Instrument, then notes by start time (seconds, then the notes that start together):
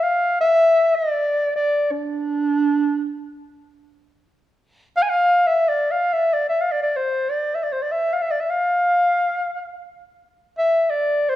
clarinet
0.03 F5
0.41 E5
0.96 D5
1.56 D5
1.91 D4
4.97 F5
5.03 G#5
5.10 F5
5.47 E5
5.69 D5
5.91 F5
6.13 E5
6.34 D5
6.49 E5
6.61 F5
6.72 D5
6.83 D5
6.96 C5
7.30 D5
7.55 E5
7.63 D5
7.72 C5
7.82 D5
7.92 E5
8.13 F5
8.22 E5
8.31 D5
8.40 E5
8.50 F5
10.58 E5
10.90 D5
11.29 C5